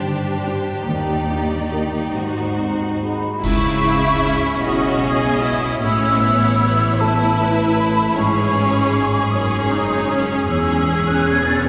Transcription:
Already playing: cello section G2, felt piano G2 D3 D#3 D4, viola section D4, violin section G4 C5
0.07 felt piano D3
0.47 felt piano D4
0.87 double bass section D#2, cello section D#2, felt piano D#2, viola section D#4, violin section D5
1.30 felt piano D4
1.71 felt piano G4 A#4
2.14 double bass section G#1, cello section G#2, felt piano G#2, violin section F#4 C5
2.58 felt piano C4
3.02 felt piano F#4 G#4, flute section B5
3.42 double bass section C#2, felt piano C#2, cello section C#3, violin section E4 E5, viola section E4, flute section C#6, concert bass drum, crash
3.83 viola section E4
4.24 viola section C#4
4.63 double bass section B1, cello section B2, felt piano E4 G#4, violin section F#4 D#5, flute section D#6
5.04 violin section G#4
5.42 violin section E4
5.82 double bass section A1, cello section A2, felt piano A2, viola section C#4, violin section E4 C#5, flute section E6
6.21 viola section B3
6.60 viola section B3
6.98 felt piano E4 A4, viola section E4, violin section E4 B4, flute section A5
7.76 flute section B5
8.14 double bass section G#1, felt piano G#2, cello section G#2, viola section C#4, violin section G#4 C#5, flute section C#6
9.32 double bass section F#1, cello section F#2, viola section C#4, felt piano D#4 C#5, violin section C#5, flute section D#6
9.72 viola section D#4
10.11 viola section C#4
10.48 double bass section E1, cello section E2, felt piano E2, viola section C#4, violin section G#4, flute section E6
11.06 flute section F#6
11.26 flute section G#6
11.45 flute section A6
11.64 viola section B3, felt piano D#4 B4, violin section G#4, flute section G#6

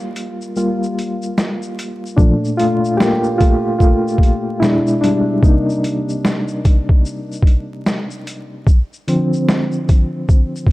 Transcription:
Already playing: synth keys G3 A#3 F4
0.16 closed hi-hat, shaker
0.41 shaker
0.56 synth keys G3 A#3 F4, shaker
0.83 shaker
0.99 closed hi-hat, shaker
1.22 shaker
1.38 snare, shaker
1.62 shaker
1.79 closed hi-hat, shaker
2.06 shaker
2.16 synth keys A#2 F3 A3 D4, kick, shaker
2.45 shaker
2.57 synth keys A3 F4, closed hi-hat, shaker
2.85 shaker
2.97 synth keys A#3 G4, snare
3.01 shaker
3.24 shaker
3.38 synth keys A3 F4, kick, closed hi-hat, shaker
3.79 synth keys A3 F4, kick, shaker
4.08 shaker
4.18 kick
4.23 closed hi-hat, shaker
4.60 synth keys B2 G#3 D4 E4, snare, shaker
4.87 shaker
5.01 synth keys G3 D4, closed hi-hat, shaker
5.43 synth keys C3 A#3 D#4, kick, shaker
5.69 shaker
5.84 closed hi-hat, shaker
6.09 shaker
6.25 snare, shaker
6.48 shaker
6.65 kick, closed hi-hat, shaker
6.89 kick
7.05 shaker
7.32 shaker
7.43 kick
7.47 closed hi-hat, shaker
7.86 snare, shaker
8.11 shaker
8.27 closed hi-hat, shaker
8.67 kick, shaker
8.93 shaker
9.08 synth keys D3 F3 C4, closed hi-hat, shaker
9.33 shaker
9.49 snare, shaker
9.72 shaker
9.89 kick, closed hi-hat, shaker
10.29 kick, shaker
10.56 shaker
10.66 kick

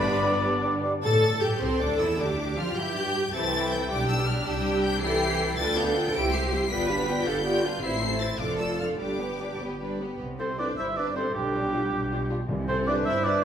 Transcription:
Already playing: double bass section G1, cello section G2, french horn section G3 D4, viola section B3 D4, flute section B4, violin section B4 B5, trumpet D5
0.04 bassoon G3, clarinet D4, cor anglais D5
0.23 bassoon G3, clarinet D4, cor anglais D5
0.43 bassoon G3, clarinet D4, cor anglais D5
0.64 bassoon G3, clarinet D4, cor anglais D5
0.83 bassoon G3, clarinet D4, cor anglais D5
1.04 double bass section A2, viola section A4, violin section A4 A6
1.42 double bass section G2, violin section G4 G6, viola section G4
1.61 double bass section C2, viola section C4, violin section C4 C6, cello section A4
1.79 double bass section D2, viola section D4, violin section D4 D6
1.99 double bass section E2, violin section E4 E6, viola section E4
2.19 double bass section D2, viola section D4, violin section D4 D6, cello section G4
2.57 double bass section F2, violin section F4 F6, viola section F4
2.76 double bass section G2, cello section E4, viola section G4, violin section G4 G6
2.95 cello section D4
3.14 cello section G4
3.33 double bass section C2, viola section E3 C4, cello section E4, violin section A4 G5 A6
3.71 violin section G6
3.90 double bass section B1, viola section G3 D4, cello section D4, violin section G4 D6
4.08 violin section E6
4.27 violin section F6
4.45 double bass section C2, viola section G3, violin section G4 G5 E6, cello section G4
4.83 violin section G6
5.02 viola section E3 E4, violin section G4 G5 C7, cello section A4
5.22 cello section G4
5.40 cello section A4
5.58 double bass section D2, viola section D4 F4, violin section B4 G5 A6
5.77 viola section B3 D4, violin section G4 F5 G6
5.95 viola section D4 F4, violin section B4 G5
6.13 double bass section C2, viola section G3 E4, cello section G4, violin section C5 G5 D7
6.32 viola section C4 G4, violin section G4 E5 C7
6.51 viola section G3 E4, violin section C5 G5
6.70 double bass section G1, viola section B3 F4, cello section B4, violin section D5 G5 B6
6.88 viola section D4 G4, violin section B4 F5 B6
7.07 viola section B3 F4, violin section D5 G5
7.25 double bass section G1, viola section D4 G4, cello section A4, violin section B4 F5 G6
7.44 viola section B3 F4, cello section G4, violin section D5 G5
7.63 viola section D4 G4, cello section F4, violin section B4 F5
7.82 double bass section A1, viola section C4 E4, cello section E4, violin section C5 E5 C7
8.01 viola section A3 C4, violin section A4 C5
8.20 viola section C4 E4, violin section C5 E5 A6
8.39 double bass section F1, viola section F3 D4, violin section F4 F5 D6, cello section A4
8.59 viola section A3 F4, violin section A4 D5 E6
8.79 viola section F3 D4, violin section F4 F5 F6
8.99 double bass section G1, viola section G3 D4, cello section G4, violin section B4 D5 D6
9.20 viola section B3, violin section G4 B4
9.41 viola section G3 D4, violin section B4 D5
9.60 double bass section G1, viola section B3, violin section G4 B4
9.80 viola section G3 D4, violin section B4 D5
10.01 viola section B3, violin section G4 B4
10.20 double bass section C2, cello section C3
10.39 violin section C4 E4 C5, viola section C4, clarinet A4, flute section C5, cor anglais C5
10.57 french horn section G3 E4, violin section C4 E4 D5, viola section D4, clarinet B4, flute section D5, cor anglais D5
10.77 double bass section G1, cello section G2, viola section E4, clarinet C5, violin section E5, cor anglais E5, flute section E5
10.96 violin section C4 E4 D5, viola section D4, clarinet B4, flute section D5, cor anglais D5
11.16 french horn section G3 E4, violin section C4 E4 C5, viola section C4, clarinet A4, cor anglais C5, flute section C5
11.34 double bass section B1, cello section B2, viola section G3, clarinet D4, cor anglais G4, flute section G4, violin section G4
11.55 violin section D4 F4
11.72 french horn section G3 F4, violin section D4 F4
11.92 double bass section B1, cello section B2
12.12 violin section D4 F4
12.30 french horn section G3 F4, violin section D4 F4
12.49 double bass section C2, timpani C3, cello section C3
12.68 viola section C4, violin section C4 E4 C5, clarinet A4, cor anglais C5, flute section C5
12.87 french horn section G3 E4, violin section C4 E4 D5, viola section D4, clarinet B4, cor anglais D5, flute section D5
13.06 double bass section G1, cello section G2, viola section E4, clarinet C5, cor anglais E5, flute section E5, violin section E5
13.24 violin section C4 E4 D5, viola section D4, clarinet B4, cor anglais D5, flute section D5

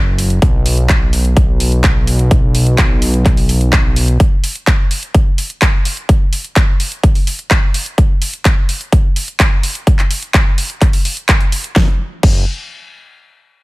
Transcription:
Already playing: analog synth bass F#1
0.18 open hi-hat
0.30 closed hi-hat
0.42 analog synth bass B1, kick, closed hi-hat
0.66 open hi-hat
0.78 closed hi-hat
0.89 kick, clap, closed hi-hat
1.13 open hi-hat
1.25 closed hi-hat
1.37 kick, closed hi-hat
1.60 open hi-hat
1.72 closed hi-hat
1.84 kick, clap, closed hi-hat
2.07 open hi-hat
2.19 closed hi-hat
2.31 kick, closed hi-hat
2.55 open hi-hat
2.67 closed hi-hat
2.78 kick, clap, closed hi-hat
3.02 open hi-hat
3.14 closed hi-hat
3.26 kick, clap, closed hi-hat
3.37 open hi-hat
3.49 open hi-hat
3.61 closed hi-hat
3.73 kick, clap, closed hi-hat
3.96 open hi-hat
4.08 closed hi-hat
4.20 kick, closed hi-hat
4.44 open hi-hat
4.55 closed hi-hat
4.67 kick, clap, closed hi-hat
4.91 open hi-hat
5.03 closed hi-hat
5.14 kick, closed hi-hat
5.38 open hi-hat
5.50 closed hi-hat
5.62 kick, clap, closed hi-hat
5.85 open hi-hat
5.97 closed hi-hat
6.09 kick, closed hi-hat
6.33 open hi-hat
6.44 closed hi-hat
6.56 kick, clap, closed hi-hat
6.80 open hi-hat
6.92 closed hi-hat
7.03 kick, closed hi-hat
7.15 open hi-hat
7.27 open hi-hat
7.39 closed hi-hat
7.51 kick, clap, closed hi-hat
7.74 open hi-hat
7.86 closed hi-hat
7.98 kick, closed hi-hat
8.22 open hi-hat
8.33 closed hi-hat
8.45 kick, clap, closed hi-hat
8.69 open hi-hat
8.81 closed hi-hat
8.92 kick, closed hi-hat
9.16 open hi-hat
9.28 closed hi-hat
9.40 kick, clap, closed hi-hat
9.63 open hi-hat
9.75 closed hi-hat
9.87 kick, closed hi-hat
9.99 clap, closed hi-hat
10.11 open hi-hat
10.22 closed hi-hat
10.34 kick, clap, closed hi-hat
10.58 open hi-hat
10.70 closed hi-hat
10.81 kick, clap, closed hi-hat
10.93 open hi-hat
11.05 open hi-hat
11.17 closed hi-hat
11.29 kick, clap, closed hi-hat
11.40 closed hi-hat
11.52 open hi-hat
11.64 closed hi-hat
11.76 analog synth bass F#1, kick, snare
12.23 analog synth bass F#1, kick, crash

